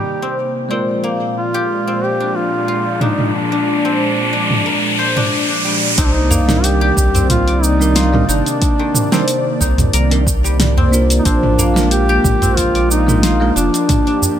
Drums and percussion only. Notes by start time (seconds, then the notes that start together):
3.01 mid tom
3.19 mid tom
4.51 mid tom
5.17 mid tom
5.98 kick, open hi-hat, cabasa
6.31 udu, cabasa
6.49 snare, mid tom, cabasa
6.64 open hi-hat, cabasa
6.97 kick, cabasa
7.15 open hi-hat, udu, cabasa
7.30 kick, mid tom, open hi-hat, cabasa
7.48 open hi-hat
7.64 cabasa
7.82 cabasa
7.96 snare, open hi-hat, cabasa
8.14 mid tom
8.30 cabasa
8.46 open hi-hat, cabasa
8.62 kick, open hi-hat, cabasa
8.95 mid tom, cabasa
9.12 snare, cabasa
9.28 open hi-hat, cabasa
9.61 kick, cabasa
9.78 mid tom, open hi-hat, udu, cabasa
9.93 open hi-hat, cabasa
10.11 open hi-hat
10.27 kick, cabasa
10.45 cabasa
10.60 snare, mid tom, open hi-hat, cabasa
10.77 udu
10.93 cabasa
11.10 open hi-hat, cabasa
11.25 kick, open hi-hat, cabasa
11.43 mid tom
11.58 udu, cabasa
11.76 snare, cabasa
11.91 open hi-hat, cabasa
12.24 kick, mid tom, cabasa
12.42 open hi-hat, udu, cabasa
12.57 kick, open hi-hat, cabasa
12.75 open hi-hat
12.91 cabasa
13.08 mid tom, cabasa
13.23 snare, open hi-hat, cabasa
13.57 cabasa
13.74 open hi-hat, cabasa
13.89 kick, mid tom, open hi-hat, cabasa
14.07 open hi-hat
14.22 udu, cabasa